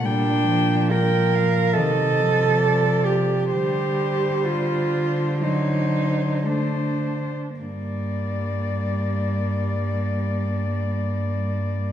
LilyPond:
<<
  \new Staff \with { instrumentName = "Cello" } { \time 4/4 \key g \minor \tempo 4 = 61 g''4 g''8 f''8 ees''4 d''4 | c''2 c''4 c''8. r16 | d''1 | }
  \new Staff \with { instrumentName = "Cello" } { \time 4/4 \key g \minor d'4 bes'4 a'4. g'8 | g'4 f'4 ees'4 d'4 | bes1 | }
  \new Staff \with { instrumentName = "Cello" } { \clef bass \time 4/4 \key g \minor g8 f4. ees8 f4. | g2 fis4 a8 r8 | g1 | }
  \new Staff \with { instrumentName = "Cello" } { \clef bass \time 4/4 \key g \minor bes,2 c2 | d2.~ d8. r16 | g,1 | }
>>